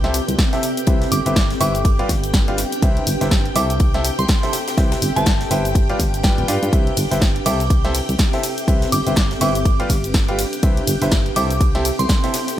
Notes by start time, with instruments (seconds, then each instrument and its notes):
Already playing: fm bass C2, ambient pad C4 B4 E5 G5, string machine G4 G5
0.04 grand piano C3 E4 G4 A4 C5 E5, snare, closed hi-hat
0.11 ambient pad A4, open hi-hat, ride, shaker
0.28 fm bass C2, closed hi-hat, shaker
0.39 kick, snare, closed hi-hat, ride, shaker
0.53 grand piano C3 E4 G4 A4 C5 E5, snare, closed hi-hat
0.63 open hi-hat, ride, shaker
0.77 closed hi-hat, shaker
0.87 fm bass C2, grand piano C3 E4 G4 B4 C5 E5, kick, closed hi-hat, ride, shaker
1.02 ambient pad B4, snare, closed hi-hat
1.12 fm bass G1, synth bell D6, open hi-hat, ride, shaker
1.26 fm bass G1, grand piano C3 E4 G4 B4 C5 E5, closed hi-hat, ride, shaker
1.36 kick, snare, closed hi-hat, ride, shaker
1.51 snare, closed hi-hat
1.60 fm bass G1, grand piano E4 G4 B4 C5 E5, synth bell D6, open hi-hat, ride, shaker
1.75 closed hi-hat, shaker
1.85 ambient pad D4, kick, closed hi-hat, ride, shaker
1.99 grand piano G3 F4 G4 B4 D5 F5, closed hi-hat
2.09 fm bass G1, kick, snare, open hi-hat, ride, shaker
2.24 closed hi-hat, shaker
2.34 kick, snare, closed hi-hat, ride, shaker
2.48 grand piano G3 F4 G4 B4 D5 F5, closed hi-hat
2.58 snare, open hi-hat, ride, shaker
2.72 closed hi-hat, shaker
2.82 fm bass C2, grand piano C3 E4 G4 B4 C5 E5, ambient pad C4, kick, closed hi-hat, ride, shaker
2.97 closed hi-hat
3.07 fm bass G1, open hi-hat, ride, shaker
3.17 ambient pad E5
3.21 fm bass G1, grand piano C3 E4 G4 B4 C5 E5, snare, closed hi-hat, shaker
3.31 kick, snare, closed hi-hat, ride, shaker
3.46 closed hi-hat
3.56 fm bass C2, grand piano C3 E4 G4 A4 C5 E5, synth bell D6, open hi-hat, ride, shaker
3.69 ambient pad A4, closed hi-hat, shaker
3.80 kick, closed hi-hat, ride, shaker
3.94 grand piano C3 E4 G4 A4 C5 E5, snare, closed hi-hat
4.05 open hi-hat, ride, shaker
4.19 fm bass C2, synth bell C6, closed hi-hat, shaker
4.28 kick, snare, closed hi-hat, ride, shaker
4.43 grand piano C3 E4 G4 A4 C5 E5, snare, closed hi-hat
4.53 snare, open hi-hat, ride, shaker
4.68 snare, closed hi-hat, ride, shaker
4.78 fm bass C2, grand piano C3 E4 G4 B4 C5 E5, kick, snare, closed hi-hat, ride, shaker
4.92 snare, closed hi-hat, ride
5.02 fm bass G1, open hi-hat, ride, shaker
5.08 ambient pad B4
5.16 fm bass G1, grand piano C3 E4 G4 B4 C5 E5, synth bell A5, closed hi-hat, ride, shaker
5.26 kick, snare, closed hi-hat, ride, shaker
5.40 snare, closed hi-hat
5.51 fm bass G1, grand piano E4 G4 B4 C5 E5, open hi-hat, ride, shaker
5.65 closed hi-hat, shaker
5.75 ambient pad D4, kick, closed hi-hat, ride, shaker
5.89 grand piano G3 F4 G4 B4 D5 F5, closed hi-hat
5.99 fm bass G1, kick, snare, open hi-hat, ride, shaker
6.14 closed hi-hat, shaker
6.24 grand piano G3 F4 G4 B4 D5 G5, kick, snare, closed hi-hat, ride, shaker
6.38 fm bass D1, closed hi-hat
6.48 fm bass G2, grand piano F4 G4 B4 D5 F5, snare, open hi-hat, ride, shaker
6.63 fm bass G2, closed hi-hat, shaker
6.73 fm bass C2, grand piano C3 E4 G4 B4 C5 E5, ambient pad C4, kick, closed hi-hat, ride, shaker
6.87 closed hi-hat
6.97 fm bass G1, open hi-hat, ride, shaker
7.07 ambient pad E5
7.11 fm bass G1, grand piano C3 E4 G4 B4 C5 E5, snare, closed hi-hat, shaker
7.21 kick, snare, closed hi-hat, ride, shaker
7.36 closed hi-hat
7.46 fm bass C2, grand piano C3 E4 G4 A4 C5 E5, synth bell D6, open hi-hat, ride, shaker
7.60 closed hi-hat, shaker
7.70 kick, closed hi-hat, ride, shaker
7.85 grand piano C3 E4 G4 A4 C5 E5, ambient pad A4, snare, closed hi-hat
7.94 open hi-hat, ride, shaker
8.09 fm bass C2, closed hi-hat, shaker
8.19 kick, snare, closed hi-hat, ride, shaker
8.33 grand piano C3 E4 G4 A4 C5 E5, snare, closed hi-hat
8.43 open hi-hat, ride, shaker
8.58 closed hi-hat, shaker
8.68 fm bass C2, grand piano C3 E4 G4 B4 C5 E5, kick, closed hi-hat, ride, shaker
8.82 snare, closed hi-hat
8.92 fm bass G1, synth bell D6, open hi-hat, ride, shaker
9.07 fm bass G1, grand piano C3 E4 G4 B4 C5 E5, closed hi-hat, ride, shaker
9.13 ambient pad B4, kick, snare
9.17 snare, closed hi-hat, ride, shaker
9.31 snare, closed hi-hat
9.41 fm bass G1, grand piano E4 G4 B4 C5 E5, synth bell D6, open hi-hat, ride, shaker
9.55 closed hi-hat, shaker
9.65 ambient pad D4, kick, closed hi-hat, ride, shaker
9.80 grand piano G3 F4 G4 B4 D5 F5, closed hi-hat
9.89 fm bass G1, ambient pad F5, kick, snare, open hi-hat, ride, shaker
10.04 closed hi-hat, shaker
10.14 kick, snare, closed hi-hat, ride, shaker
10.29 grand piano G3 F4 G4 B4 D5 F5, closed hi-hat
10.39 snare, open hi-hat, ride, shaker
10.53 closed hi-hat, shaker
10.63 fm bass C2, grand piano C3 E4 G4 B4 C5 E5, ambient pad C4, kick, closed hi-hat, ride, shaker
10.77 closed hi-hat
10.87 fm bass G1, open hi-hat, ride, shaker
10.97 ambient pad E5
11.02 fm bass G1, grand piano C3 E4 G4 B4 C5 E5, snare, closed hi-hat, shaker
11.11 kick, snare, closed hi-hat, ride, shaker
11.26 closed hi-hat
11.36 fm bass C2, grand piano C3 E4 G4 A4 C5 E5, synth bell D6, open hi-hat, ride, shaker
11.50 ambient pad A4, closed hi-hat, shaker
11.61 kick, closed hi-hat, ride, shaker
11.75 grand piano C3 E4 G4 A4 C5 E5, snare, closed hi-hat
11.85 open hi-hat, ride, shaker
11.99 fm bass C2, synth bell C6, closed hi-hat, shaker
12.09 kick, snare, closed hi-hat, ride, shaker
12.23 grand piano C3 E4 G4 A4 C5 E5, snare, closed hi-hat
12.34 snare, open hi-hat, ride, shaker
12.47 snare, closed hi-hat, shaker